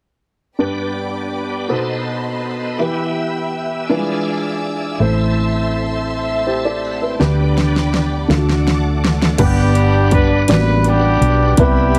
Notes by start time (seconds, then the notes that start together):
0.58 G2 B3 D4 G4 B4 D5 G5 B5 D6
1.68 B2 B3 D#4 F#4 A4 B4 C5 D#5 A5 B5 C6
1.76 C5
2.78 E3 B3 E4 G4 B4 D5 E5 G5 E6
2.85 E5
3.87 E3 G3 D4 E4 F4 G#4 B4 D5 F5 G#5 D6
3.96 G#3 E5
4.98 A1 A2 C4 E4 A4 C5 E5 A5 C6
6.47 G4 C5 E5 A5
6.65 A4 D5
6.85 F#5 B5
7.01 B4 E5 G5 C6
7.20 D2 D3 B3 D4 G4 B4 D5 G5 B5 D6, snare
7.58 snare
7.76 snare
7.94 snare
8.27 D2 D3 A3 D4 F4 F#4 A4 C5 F#5 A5 D6, snare
8.36 F#4 D5
8.49 snare
8.68 snare
9.05 snare
9.22 snare
9.38 G1 G2 G3 B3 D4 G4 B4 F#5, kick, closed hi-hat, crash
9.75 closed hi-hat
10.11 B4, kick, closed hi-hat
10.48 A1 G3 A#3 D4 F#4 B4 D5, snare, closed hi-hat
10.55 B3
10.84 B3 D4 G4, closed hi-hat
11.21 B1, closed hi-hat
11.57 C2 C3 G3 B3 E4 A#4 B4, kick, closed hi-hat
11.62 G4 B4
11.95 closed hi-hat